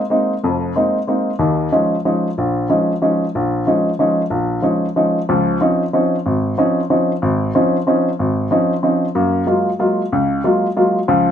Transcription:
grand piano
0.10 G#3 A#3 C4 D#4
0.44 F1 F2
0.76 G#3 A#3 C4 D#4
1.07 G#3 A#3 C4 D#4
1.39 D#2 D#3
1.72 F3 G#3 C#4 D#4
2.05 F3 G#3 C#4 D#4
2.38 A#1
2.69 F3 G#3 C#4 D#4
3.02 F3 G#3 C#4 D#4
3.35 A#1
3.67 F3 G#3 C#4 D#4
3.99 F3 G#3 C#4 D#4
4.30 A#1
4.62 F3 G#3 C#4 D#4
4.96 F3 G#3 C#4 D#4
5.29 C#2 F3
5.61 F3 C4 C#4 D#4
5.93 F3 C4 C#4 D#4
6.26 G#1
6.58 F3 C4 C#4 D#4
6.90 F3 C4 C#4 D#4
7.22 G#1
7.55 F3 C4 C#4 D#4
7.87 F3 C4 C#4 D#4
8.19 G#1
8.51 F3 C4 C#4 D#4
8.83 F3 C4 C#4 D#4
9.15 F#2 A#3
9.46 F#3 G#3 A#3 F4
9.79 F#3 G#3 A#3 F4
10.12 C#2
10.44 F#3 G#3 A#3 F4
10.77 F#3 G#3 A#3 F4
11.08 C#2 F3

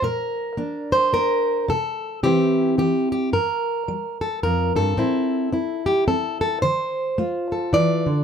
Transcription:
steel-string acoustic guitar
0.02 A#2 A#4
0.57 A#3 D4
0.92 C5
1.13 A#3 A#4
1.68 C3 A4
2.23 C3 E3 C4 E4 G4
2.78 E3 G4
3.12 G4
3.33 G2 A#4
3.88 G3
4.21 A4
4.43 F2 A#4
4.76 G2 A4
4.97 A2 C4 E4
5.53 C4 E4
5.86 G4
6.08 C4 A4
6.41 A4
6.62 D3 C5
7.18 A3 F4
7.52 A4
7.73 E3 D5
8.06 D3

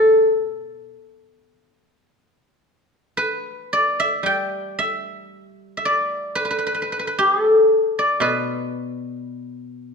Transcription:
guzheng
Already playing: B2 A4
3.17 B4
3.73 D5
4.00 E5
4.23 G3 G5
4.79 E5
5.77 E5
5.85 D5
6.35 B4
6.45 B4
6.51 B4
6.59 B4
6.67 B4
6.75 B4
6.82 B4
6.92 B4
6.99 B4
7.07 B4
7.19 G4
7.41 A4
7.99 D5
8.20 B2 B4

